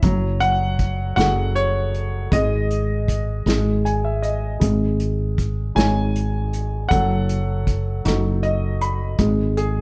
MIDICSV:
0, 0, Header, 1, 4, 480
1, 0, Start_track
1, 0, Tempo, 762389
1, 19, Time_signature, 6, 3, 24, 8
1, 6177, End_track
2, 0, Start_track
2, 0, Title_t, "Grand piano"
2, 0, Program_c, 0, 0
2, 0, Control_c, 0, 64, 127
2, 20, Note_on_c, 0, 54, 65
2, 26, Control_c, 0, 64, 0
2, 150, Control_c, 0, 64, 127
2, 255, Note_on_c, 0, 78, 102
2, 722, Note_off_c, 0, 78, 0
2, 732, Note_on_c, 0, 78, 96
2, 736, Note_on_c, 0, 66, 49
2, 739, Note_on_c, 0, 69, 49
2, 741, Note_on_c, 0, 68, 45
2, 979, Note_on_c, 0, 73, 94
2, 982, Note_off_c, 0, 78, 0
2, 1433, Note_off_c, 0, 73, 0
2, 1434, Note_off_c, 0, 54, 0
2, 1435, Note_off_c, 0, 66, 0
2, 1437, Note_off_c, 0, 69, 0
2, 1438, Note_off_c, 0, 68, 0
2, 1457, Note_on_c, 0, 56, 64
2, 1466, Control_c, 0, 64, 0
2, 1467, Note_on_c, 0, 75, 78
2, 1477, Note_on_c, 0, 68, 58
2, 1572, Control_c, 0, 64, 127
2, 1979, Note_off_c, 0, 75, 0
2, 2158, Note_off_c, 0, 56, 0
2, 2165, Note_off_c, 0, 68, 0
2, 2181, Note_on_c, 0, 56, 59
2, 2187, Control_c, 0, 64, 0
2, 2310, Control_c, 0, 64, 127
2, 2425, Note_on_c, 0, 80, 62
2, 2536, Note_off_c, 0, 80, 0
2, 2547, Note_on_c, 0, 76, 56
2, 2657, Note_off_c, 0, 76, 0
2, 2660, Note_on_c, 0, 75, 59
2, 2882, Note_off_c, 0, 56, 0
2, 2885, Note_off_c, 0, 75, 0
2, 2895, Note_on_c, 0, 56, 54
2, 2911, Control_c, 0, 64, 0
2, 3033, Control_c, 0, 64, 127
2, 3620, Note_on_c, 0, 63, 43
2, 3626, Note_on_c, 0, 80, 93
2, 3627, Note_on_c, 0, 68, 41
2, 3629, Note_on_c, 0, 73, 47
2, 4082, Note_off_c, 0, 80, 0
2, 4318, Note_off_c, 0, 56, 0
2, 4323, Note_off_c, 0, 63, 0
2, 4326, Note_off_c, 0, 68, 0
2, 4327, Note_off_c, 0, 73, 0
2, 4335, Note_on_c, 0, 78, 94
2, 4348, Note_on_c, 0, 69, 70
2, 4349, Note_on_c, 0, 54, 57
2, 4356, Control_c, 0, 64, 0
2, 4448, Control_c, 0, 64, 127
2, 5063, Note_off_c, 0, 69, 0
2, 5068, Note_on_c, 0, 63, 45
2, 5072, Note_on_c, 0, 66, 44
2, 5073, Note_on_c, 0, 69, 50
2, 5307, Note_on_c, 0, 75, 67
2, 5514, Note_off_c, 0, 78, 0
2, 5529, Note_off_c, 0, 75, 0
2, 5550, Note_on_c, 0, 83, 62
2, 5760, Note_off_c, 0, 54, 0
2, 5763, Note_off_c, 0, 63, 0
2, 5765, Note_off_c, 0, 66, 0
2, 5766, Note_off_c, 0, 69, 0
2, 5770, Note_off_c, 0, 83, 0
2, 5786, Note_on_c, 0, 56, 65
2, 5792, Control_c, 0, 64, 0
2, 5896, Control_c, 0, 64, 127
2, 6027, Note_on_c, 0, 68, 77
2, 6177, Note_off_c, 0, 56, 0
2, 6177, Note_off_c, 0, 68, 0
2, 6177, End_track
3, 0, Start_track
3, 0, Title_t, "Fretless electric bass"
3, 0, Program_c, 1, 35
3, 17, Note_on_c, 1, 30, 97
3, 713, Note_off_c, 1, 30, 0
3, 736, Note_on_c, 1, 30, 91
3, 1432, Note_off_c, 1, 30, 0
3, 1461, Note_on_c, 1, 32, 94
3, 2157, Note_off_c, 1, 32, 0
3, 2178, Note_on_c, 1, 32, 79
3, 2877, Note_off_c, 1, 32, 0
3, 2908, Note_on_c, 1, 32, 95
3, 3603, Note_off_c, 1, 32, 0
3, 3627, Note_on_c, 1, 32, 82
3, 4322, Note_off_c, 1, 32, 0
3, 4351, Note_on_c, 1, 30, 99
3, 5043, Note_off_c, 1, 30, 0
3, 5071, Note_on_c, 1, 30, 86
3, 5761, Note_off_c, 1, 30, 0
3, 5786, Note_on_c, 1, 32, 93
3, 6177, Note_off_c, 1, 32, 0
3, 6177, End_track
4, 0, Start_track
4, 0, Title_t, "Drums"
4, 16, Note_on_c, 9, 42, 69
4, 18, Note_on_c, 9, 36, 91
4, 79, Note_off_c, 9, 42, 0
4, 81, Note_off_c, 9, 36, 0
4, 257, Note_on_c, 9, 42, 51
4, 320, Note_off_c, 9, 42, 0
4, 497, Note_on_c, 9, 42, 53
4, 499, Note_on_c, 9, 36, 58
4, 560, Note_off_c, 9, 42, 0
4, 562, Note_off_c, 9, 36, 0
4, 741, Note_on_c, 9, 42, 68
4, 751, Note_on_c, 9, 38, 80
4, 804, Note_off_c, 9, 42, 0
4, 814, Note_off_c, 9, 38, 0
4, 980, Note_on_c, 9, 42, 50
4, 1043, Note_off_c, 9, 42, 0
4, 1224, Note_on_c, 9, 42, 44
4, 1287, Note_off_c, 9, 42, 0
4, 1460, Note_on_c, 9, 36, 90
4, 1465, Note_on_c, 9, 42, 69
4, 1523, Note_off_c, 9, 36, 0
4, 1528, Note_off_c, 9, 42, 0
4, 1704, Note_on_c, 9, 42, 44
4, 1767, Note_off_c, 9, 42, 0
4, 1941, Note_on_c, 9, 36, 57
4, 1945, Note_on_c, 9, 42, 45
4, 2004, Note_off_c, 9, 36, 0
4, 2008, Note_off_c, 9, 42, 0
4, 2184, Note_on_c, 9, 42, 60
4, 2194, Note_on_c, 9, 38, 87
4, 2247, Note_off_c, 9, 42, 0
4, 2257, Note_off_c, 9, 38, 0
4, 2430, Note_on_c, 9, 42, 44
4, 2493, Note_off_c, 9, 42, 0
4, 2666, Note_on_c, 9, 42, 44
4, 2728, Note_off_c, 9, 42, 0
4, 2905, Note_on_c, 9, 42, 64
4, 2906, Note_on_c, 9, 36, 84
4, 2968, Note_off_c, 9, 42, 0
4, 2969, Note_off_c, 9, 36, 0
4, 3147, Note_on_c, 9, 42, 46
4, 3210, Note_off_c, 9, 42, 0
4, 3389, Note_on_c, 9, 36, 61
4, 3393, Note_on_c, 9, 42, 49
4, 3451, Note_off_c, 9, 36, 0
4, 3456, Note_off_c, 9, 42, 0
4, 3634, Note_on_c, 9, 42, 63
4, 3644, Note_on_c, 9, 38, 84
4, 3697, Note_off_c, 9, 42, 0
4, 3707, Note_off_c, 9, 38, 0
4, 3876, Note_on_c, 9, 42, 46
4, 3939, Note_off_c, 9, 42, 0
4, 4113, Note_on_c, 9, 42, 50
4, 4176, Note_off_c, 9, 42, 0
4, 4350, Note_on_c, 9, 36, 86
4, 4351, Note_on_c, 9, 42, 67
4, 4413, Note_off_c, 9, 36, 0
4, 4414, Note_off_c, 9, 42, 0
4, 4592, Note_on_c, 9, 42, 45
4, 4655, Note_off_c, 9, 42, 0
4, 4829, Note_on_c, 9, 36, 61
4, 4831, Note_on_c, 9, 42, 53
4, 4892, Note_off_c, 9, 36, 0
4, 4894, Note_off_c, 9, 42, 0
4, 5070, Note_on_c, 9, 42, 71
4, 5080, Note_on_c, 9, 38, 86
4, 5133, Note_off_c, 9, 42, 0
4, 5143, Note_off_c, 9, 38, 0
4, 5309, Note_on_c, 9, 42, 49
4, 5371, Note_off_c, 9, 42, 0
4, 5549, Note_on_c, 9, 42, 48
4, 5612, Note_off_c, 9, 42, 0
4, 5784, Note_on_c, 9, 42, 67
4, 5785, Note_on_c, 9, 36, 88
4, 5847, Note_off_c, 9, 42, 0
4, 5848, Note_off_c, 9, 36, 0
4, 6027, Note_on_c, 9, 42, 47
4, 6090, Note_off_c, 9, 42, 0
4, 6177, End_track
0, 0, End_of_file